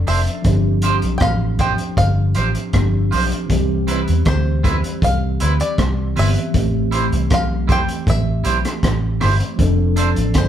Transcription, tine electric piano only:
0.00 0.40 F3 medium
0.00 0.41 C4 medium
0.00 0.42 D4 medium
0.00 0.43 A4 medium
0.42 2.68 F3 medium
0.42 2.69 C4 medium
0.46 2.70 D4 medium
0.46 2.71 G4 medium
2.72 3.49 F3 soft
2.72 3.50 C4 soft
2.72 3.50 D4 soft
2.72 3.51 G4 medium
3.46 6.11 E3 medium
3.46 6.12 G3 medium
3.51 6.13 C4 medium
3.51 6.14 G4 medium
6.15 6.50 E3 soft
6.15 6.54 B3 soft
6.15 6.54 C4 soft
6.15 6.55 G4 medium
6.51 9.54 E3 medium
6.51 9.55 A3 soft
6.56 9.56 C4 medium
6.56 9.57 G4 medium
9.56 10.48 F3 medium
9.56 10.48 C4 medium
9.56 10.48 D4 medium
9.62 10.48 A4 medium

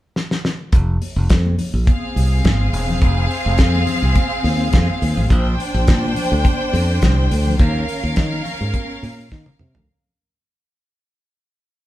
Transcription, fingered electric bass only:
0.73 0.97 F1 loud
1.16 1.28 F1 loud
1.30 1.54 F2 medium
1.74 1.85 A#1 medium
2.16 2.40 C2 medium
2.45 2.69 G#1 medium
2.73 2.97 E1 medium
3.02 3.25 F1 medium
3.46 3.57 F1 loud
3.59 3.83 F2 loud
4.02 4.14 C2 medium
4.44 4.68 D#2 medium
4.74 4.86 F2 loud
5.02 5.15 D#2 medium
5.17 5.28 A1 medium
5.30 5.54 A#1 loud
5.74 5.86 A#1 loud
5.88 6.12 A#2 medium
6.32 6.43 D2 medium
6.73 6.97 F2 medium
7.03 7.26 C2 medium
7.31 7.55 D2 medium
7.60 7.83 D#2 loud
8.04 8.15 D#2 medium
8.17 8.41 D#3 medium
8.61 8.72 G#2 medium
9.03 9.27 A#2 medium
9.32 9.45 D#3 medium
9.61 9.73 C3 medium
9.76 9.87 D2 medium

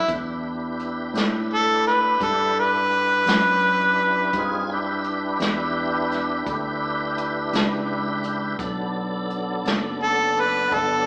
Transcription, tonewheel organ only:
0.10 4.31 D4 medium
0.10 4.31 E4 medium
0.10 4.31 G4 medium
0.10 4.31 B4 medium
4.35 4.70 C4 medium
4.35 4.70 D#4 medium
4.35 4.70 F4 medium
4.35 4.71 G#4 medium
4.71 8.57 D4 medium
4.71 8.57 E4 medium
4.71 8.57 G4 medium
4.71 8.56 B4 medium
8.59 11.06 F#3 medium
8.59 11.06 B3 medium
8.59 11.06 D4 medium
8.59 11.06 A4 medium

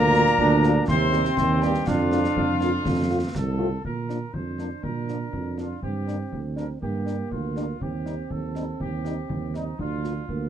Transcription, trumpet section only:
0.00 0.84 A#4 loud
0.89 1.59 C5 loud
1.62 1.85 G4 medium
1.87 3.35 F4 loud
3.36 3.81 A4 medium
3.84 4.30 A#4 medium
4.34 4.83 C5 medium
4.83 5.54 A#4 medium
5.58 5.83 F4 medium
5.83 6.40 G4 medium
6.57 6.68 A#4 medium
6.82 7.28 G4 medium
7.31 7.81 F4 medium
7.82 8.31 G4 medium
8.31 8.80 A4 medium
8.81 9.51 G4 medium
9.56 9.80 D#4 medium
9.80 10.49 F4 medium

